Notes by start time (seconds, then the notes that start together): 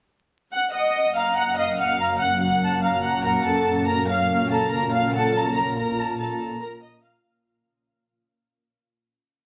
0.52 F#2 F#3 A#3 C#4 F#5 F#6
0.73 D#5 F#5 D#6
1.15 F5 A#5 F6
1.36 F#5 F#6
1.57 D#5 F5 D#6
1.78 F5 F#5 F6
1.99 A#5
2.20 F#5 F#6
2.41 F#5 F#6
2.62 A5
2.83 F5 A#5 F6
3.04 F#5 F#6
3.25 A#4 F#5 A#5
3.46 A4 A5
3.88 A#2 F4 A#4 A#5
4.09 F5 F6
4.51 A4 A5 A#5
4.72 A#4 A#5
4.93 F5 F6
5.14 A4 F#5 A5
5.35 A#5
5.56 A#4 A#5
5.77 A#4 A#5
5.98 A5
6.19 A4 A5 A#5
6.61 A#4 A#5
6.82 D#5 D#6
7.03 F5 F6